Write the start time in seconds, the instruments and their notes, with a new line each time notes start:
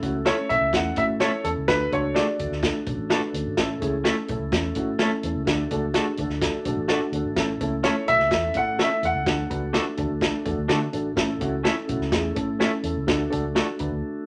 Already playing: tonewheel organ A3 C#4 E4 A4
0.02 fingered electric bass C#2, upright piano A3 C#4 E4 F#4, kick, closed hi-hat
0.25 upright piano A3 C#4 E4 A4, clean electric guitar A3 C#4 E4 A4, grand piano C#5, snare, closed hi-hat
0.49 fingered electric bass B1, upright piano A3 C#4 E4 A4, grand piano E5, kick, closed hi-hat
0.61 fingered electric bass C#2
0.73 fingered electric bass E2, upright piano A3 C#4 E4 A4, grand piano F#5, kick, snare, closed hi-hat
0.96 fingered electric bass A2, upright piano A3 C#4 E4 F#4, grand piano E5, kick, closed hi-hat
1.20 clean electric guitar A3 C#4 E4 A4, upright piano A3 C#4 E4 A4, grand piano C#5, snare, closed hi-hat
1.44 fingered electric bass E2, upright piano A3 C#4 E4 A4, grand piano A4, closed hi-hat
1.57 fingered electric bass C#2
1.68 fingered electric bass D2, upright piano A3 D4 F#4 A4, tonewheel organ A3 D4 F#4, grand piano B4, kick, snare, closed hi-hat
1.92 fingered electric bass C#2, upright piano A3 D4 F#4 A4, grand piano C#5, kick, closed hi-hat
2.15 clean electric guitar A3 D4 F#4 A4, upright piano A3 D4 F#4 G#4, grand piano D5, snare, closed hi-hat
2.38 fingered electric bass D2, upright piano A3 D4 F#4 A4, kick, closed hi-hat
2.51 fingered electric bass D2, snare
2.63 upright piano A3 D4 F#4 A4, kick, snare, closed hi-hat
2.86 fingered electric bass B1, upright piano C#4 A4, kick, closed hi-hat
2.97 fingered electric bass A1
3.10 clean electric guitar A3 D4 F#4 A4, upright piano D4 B4, snare, closed hi-hat
3.34 fingered electric bass D2, upright piano C#4 A4, closed hi-hat
3.46 fingered electric bass G#1
3.57 fingered electric bass A1, upright piano A3 C#4 E4 A4, tonewheel organ C#4 E4, kick, snare, closed hi-hat
3.81 fingered electric bass C#2, upright piano A3 C#4 E4 G#4, kick, closed hi-hat
4.04 clean electric guitar A3 C#4 E4 A4, upright piano A3 C#4 E4 A4, snare, closed hi-hat
4.28 fingered electric bass B1, upright piano A3 C#4 E4 A4, kick, closed hi-hat
4.39 fingered electric bass C#2
4.52 fingered electric bass E2, upright piano A3 C#4 E4 A4, kick, snare, closed hi-hat
4.75 fingered electric bass A2, upright piano A3 C#4 E4 F#4, kick, closed hi-hat
4.99 clean electric guitar A3 C#4 E4 A4, upright piano A3 C#4 E4 A4, snare, closed hi-hat
5.23 fingered electric bass E2, upright piano A3 C#4 E4 A4, closed hi-hat
5.36 fingered electric bass C#2
5.45 fingered electric bass D2, upright piano A3 D4 F#4 A4, tonewheel organ D4 F#4 A4, kick, snare, closed hi-hat
5.71 fingered electric bass C#2, upright piano A3 D4 F#4 A4, kick, closed hi-hat
5.94 clean electric guitar A3 D4 F#4 A4, upright piano A3 D4 F#4 G#4, snare, closed hi-hat
6.17 fingered electric bass D2, upright piano A3 D4 F#4 A4, kick, closed hi-hat
6.29 fingered electric bass D2, snare
6.42 upright piano A3 D4 F#4 A4, kick, snare, closed hi-hat
6.65 fingered electric bass B1, upright piano A3 D4 F#4 A4, kick, closed hi-hat
6.77 fingered electric bass A1
6.88 clean electric guitar A3 D4 F#4 A4, upright piano A3 D4 F#4 A4 F#5, snare, closed hi-hat
7.12 fingered electric bass D2, upright piano A3 D4 F#4 A4, closed hi-hat
7.25 fingered electric bass G#1
7.35 fingered electric bass A1, upright piano A3 C#4 E4 A4, tonewheel organ C#4 E4, kick, snare, closed hi-hat
7.60 fingered electric bass C#2, upright piano A3 C#4 E4 A4, kick, closed hi-hat
7.83 upright piano A3 C#4 E4 A4, clean electric guitar A3 C#4 E4 A4, grand piano C#5, snare, closed hi-hat
8.06 fingered electric bass B1, upright piano A3 C#4 E4 F#4, grand piano E5, kick, closed hi-hat
8.19 fingered electric bass C#2, snare
8.30 fingered electric bass E2, upright piano A3 C#4 E4 A4, kick, snare, closed hi-hat
8.54 fingered electric bass A2, upright piano A3 C#4 E4 A4, grand piano F#5, kick, closed hi-hat
8.78 upright piano A3 C#4 E4 A4, clean electric guitar A3 C#4 E4 A4, grand piano E5, snare, closed hi-hat
9.02 fingered electric bass E2, upright piano A3 C#4 E4 A4, grand piano F#5, closed hi-hat
9.14 fingered electric bass C#2
9.25 fingered electric bass D2, upright piano A3 D4 F#4 A4, tonewheel organ D4 F#4, kick, snare, closed hi-hat
9.50 fingered electric bass C#2, upright piano A3 D4 F#4 B4, kick, closed hi-hat
9.73 upright piano A3 D4 F#4 B4, clean electric guitar A3 D4 F#4 A4, snare, closed hi-hat
9.97 fingered electric bass D2, upright piano A3 D4 F#4 A4, kick, closed hi-hat
10.10 fingered electric bass D2
10.21 upright piano A3 D4 F#4 A4, kick, snare, closed hi-hat
10.45 fingered electric bass E2, upright piano A3 D4 F#4 A4, kick, closed hi-hat
10.58 fingered electric bass D2
10.68 fingered electric bass D3, clean electric guitar A3 D4 F#4 A4, upright piano A3 D4 F#4 A4, snare, closed hi-hat
10.93 fingered electric bass A1, upright piano A3 D4 F#4 A4, closed hi-hat
11.15 fingered electric bass A1, upright piano A3 C#4 E4 A4, tonewheel organ C#4 E4 A4, kick, snare, closed hi-hat
11.40 fingered electric bass C#2, upright piano A3 C#4 E4 F#4, kick, closed hi-hat
11.63 clean electric guitar A3 C#4 E4 A4, upright piano A3 C#4 E4 A4, snare, closed hi-hat
11.88 fingered electric bass B1, upright piano A3 C#4 E4 F#4, kick, closed hi-hat
12.00 fingered electric bass C#2, snare
12.12 fingered electric bass E2, upright piano A3 C#4 E4 G#4, kick, snare, closed hi-hat
12.35 fingered electric bass A2, upright piano A3 C#4 E4 A4, kick, closed hi-hat
12.59 upright piano A3 C#4 E4 A4, clean electric guitar A3 C#4 E4 A4, snare, closed hi-hat
12.83 fingered electric bass E2, upright piano A3 C#4 E4 A4, closed hi-hat
12.97 fingered electric bass C#2
13.07 fingered electric bass D2, upright piano A3 D4 F#4 A4, tonewheel organ A3 D4 F#4, kick, snare, closed hi-hat
13.30 fingered electric bass C#2, upright piano A3 D4 F#4 A4, kick, closed hi-hat
13.54 upright piano A3 D4 F#4 A4, clean electric guitar A3 D4 F#4 A4, snare, closed hi-hat
13.79 fingered electric bass D2, upright piano A3 D4 F#4 B4, kick, closed hi-hat
13.92 fingered electric bass D2